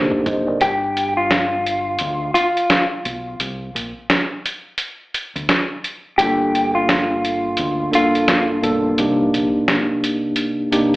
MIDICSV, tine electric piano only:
0, 0, Header, 1, 2, 480
1, 0, Start_track
1, 0, Key_signature, -2, "minor"
1, 0, Tempo, 697674
1, 419, Time_signature, 4, 2, 24, 8
1, 7542, End_track
2, 0, Start_track
2, 0, Title_t, "Tine electric piano"
2, 0, Program_c, 0, 4
2, 0, Control_c, 0, 64, 127
2, 0, Note_on_c, 0, 48, 91
2, 0, Note_on_c, 0, 58, 86
2, 0, Note_on_c, 0, 62, 82
2, 0, Note_on_c, 0, 63, 86
2, 0, Note_on_c, 0, 67, 102
2, 0, Note_on_c, 0, 69, 55
2, 0, Note_on_c, 0, 72, 66
2, 136, Note_off_c, 0, 48, 0
2, 138, Note_off_c, 0, 58, 0
2, 140, Note_off_c, 0, 62, 0
2, 142, Note_off_c, 0, 63, 0
2, 144, Note_off_c, 0, 67, 0
2, 174, Note_off_c, 0, 72, 0
2, 176, Note_off_c, 0, 69, 0
2, 183, Note_on_c, 0, 75, 68
2, 187, Note_on_c, 0, 72, 64
2, 316, Note_off_c, 0, 75, 0
2, 318, Note_off_c, 0, 72, 0
2, 323, Note_on_c, 0, 74, 69
2, 327, Note_on_c, 0, 70, 56
2, 415, Note_off_c, 0, 74, 0
2, 417, Note_off_c, 0, 70, 0
2, 427, Control_c, 0, 64, 0
2, 533, Control_c, 0, 64, 127
2, 2349, Control_c, 0, 64, 0
2, 4270, Note_on_c, 0, 43, 73
2, 4273, Note_on_c, 0, 58, 72
2, 4277, Note_on_c, 0, 62, 67
2, 4281, Note_on_c, 0, 65, 69
2, 4284, Note_on_c, 0, 69, 80
2, 4400, Control_c, 0, 64, 127
2, 5149, Note_off_c, 0, 43, 0
2, 5151, Note_off_c, 0, 58, 0
2, 5153, Note_off_c, 0, 62, 0
2, 5155, Note_off_c, 0, 65, 0
2, 5156, Note_off_c, 0, 69, 0
2, 5439, Note_on_c, 0, 43, 76
2, 5443, Note_on_c, 0, 58, 69
2, 5446, Note_on_c, 0, 62, 72
2, 5450, Note_on_c, 0, 65, 67
2, 5454, Note_on_c, 0, 69, 81
2, 5891, Note_off_c, 0, 43, 0
2, 5893, Note_off_c, 0, 58, 0
2, 5895, Note_off_c, 0, 62, 0
2, 5897, Note_off_c, 0, 65, 0
2, 5899, Note_off_c, 0, 69, 0
2, 5927, Note_on_c, 0, 43, 84
2, 5932, Note_on_c, 0, 58, 80
2, 5935, Note_on_c, 0, 62, 77
2, 5938, Note_on_c, 0, 65, 77
2, 5942, Note_on_c, 0, 69, 94
2, 6154, Note_off_c, 0, 43, 0
2, 6156, Note_off_c, 0, 58, 0
2, 6158, Note_off_c, 0, 62, 0
2, 6160, Note_off_c, 0, 65, 0
2, 6162, Note_off_c, 0, 69, 0
2, 6180, Note_on_c, 0, 48, 87
2, 6183, Note_on_c, 0, 58, 80
2, 6187, Note_on_c, 0, 62, 81
2, 6189, Control_c, 0, 64, 0
2, 6191, Note_on_c, 0, 63, 81
2, 6195, Note_on_c, 0, 67, 94
2, 6323, Control_c, 0, 64, 127
2, 7064, Note_off_c, 0, 48, 0
2, 7066, Note_off_c, 0, 58, 0
2, 7068, Note_off_c, 0, 62, 0
2, 7070, Note_off_c, 0, 63, 0
2, 7072, Note_off_c, 0, 67, 0
2, 7368, Note_on_c, 0, 48, 87
2, 7372, Note_on_c, 0, 58, 83
2, 7375, Note_on_c, 0, 62, 78
2, 7379, Note_on_c, 0, 63, 89
2, 7383, Note_on_c, 0, 67, 100
2, 7542, Note_off_c, 0, 48, 0
2, 7542, Note_off_c, 0, 58, 0
2, 7542, Note_off_c, 0, 62, 0
2, 7542, Note_off_c, 0, 63, 0
2, 7542, Note_off_c, 0, 67, 0
2, 7542, End_track
0, 0, End_of_file